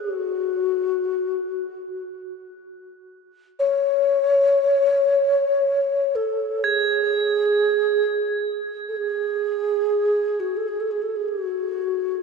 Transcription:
Already playing: F#6
0.00 F#4
3.59 C#5
6.15 A4
6.63 G#4 G#6
8.88 A4
8.96 G#4
10.39 F#4
10.56 A4
10.68 G#4
10.80 A4
10.91 G#4
11.02 A4
11.16 G#4
11.28 F#4

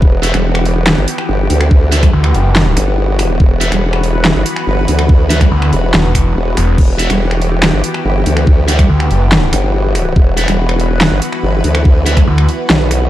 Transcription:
Already playing: E3 B3 F#4
0.02 E1 G4, kick
0.23 G3 F#4 E5, closed hi-hat
0.34 E1, finger snap, closed hi-hat
0.55 finger snap
0.65 open hi-hat
0.87 snare, clap
0.97 G1
1.08 closed hi-hat
1.18 finger snap
1.29 G1
1.50 D2, open hi-hat
1.61 finger snap
1.71 kick
1.92 G3 F#4 E5, closed hi-hat
2.03 finger snap, kick, closed hi-hat
2.13 D2
2.24 finger snap
2.34 F#1, open hi-hat
2.56 snare, clap
2.77 G1, finger snap, closed hi-hat
3.19 finger snap, open hi-hat
3.40 E1 B4, kick
3.61 G3 F#4 E5, closed hi-hat
3.72 E1, finger snap, closed hi-hat
3.93 finger snap
4.04 open hi-hat
4.25 snare, clap
4.35 G1
4.46 closed hi-hat
4.56 finger snap
4.67 G1
4.88 D2, open hi-hat
4.99 finger snap
5.09 kick
5.30 G3 F#4 E5, snare, closed hi-hat
5.41 finger snap, kick, closed hi-hat
5.52 D2
5.62 finger snap
5.73 E1, open hi-hat
5.94 E1, snare, clap
6.15 finger snap, kick, closed hi-hat
6.36 E1
6.57 E1, finger snap, open hi-hat
6.78 E1 G4, kick, crash
6.99 G3 F#4 E5, closed hi-hat
7.10 E1, finger snap, closed hi-hat
7.31 finger snap
7.42 open hi-hat
7.63 snare, clap
7.73 G1
7.84 closed hi-hat
7.94 finger snap
8.05 G1
8.26 D2, open hi-hat
8.37 finger snap
8.47 kick
8.68 G3 F#4 E5, closed hi-hat
8.79 finger snap, kick, closed hi-hat
8.89 D2
9.00 finger snap
9.11 F#1, open hi-hat
9.32 snare, clap
9.53 G1, finger snap, closed hi-hat
9.95 finger snap, open hi-hat
10.16 E1 B4, kick
10.37 G3 F#4 E5, closed hi-hat
10.48 E1, finger snap, closed hi-hat
10.69 finger snap
10.80 open hi-hat
11.01 snare, clap
11.11 G1
11.22 closed hi-hat
11.32 finger snap
11.43 G1
11.64 D2, open hi-hat
11.75 finger snap
11.85 kick
12.06 G3 F#4 E5, closed hi-hat
12.17 finger snap, kick, closed hi-hat
12.28 D2
12.38 finger snap
12.49 open hi-hat
12.70 B1, snare, clap
12.91 finger snap, closed hi-hat

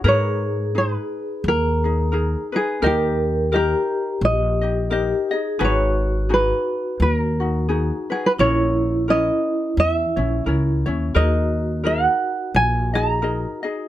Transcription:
0.04 G#2 D#4 G#4 A#4 B4
0.08 C#5
0.75 D#4 G#4 B4
1.44 D#2
1.48 A#4
1.84 D#4 G#4
2.12 D#4 G#4 A#4
2.52 D#4 G#4 B4
2.82 D#2 D#4 G4 A#4 D#5
2.86 G4
3.52 D#4 G4 A#4 D#5
4.21 A#1 D#5
4.61 D#4 G4 D#5
4.90 D#4 G4 A#4 D#5
5.31 D#4 G#4 D#5
5.59 G#1 D#4 F#4 G#4 B4
5.65 C#5
6.29 D#4 F#4 G#4
6.34 B4
7.00 D#2 B4
7.13 A#4
7.40 D#4 F#4
7.69 D#4 F#4 G#4
8.10 D#4 F#4 G#4 B4
8.26 B4
8.39 A#1 C#4 E4 A#4 C#5
9.08 C#4 E4 A#4 C#5 D#5
9.77 E2 E5
10.16 A#1 C#4 E4 C#5
10.46 C#2 C#4 E4 A#4 C#5
10.86 D#2 C#4 E4 C#5
11.15 D#2 D#4 F#4 G#4 A#4 D#5
11.84 D#4 G#4 A#4 D#5 F#5
12.54 A#1 G#5
12.94 D#4 G#4 D#5 A#5
13.22 D#4 G#4 A#4 D#5
13.63 D#4 G#4 D#5

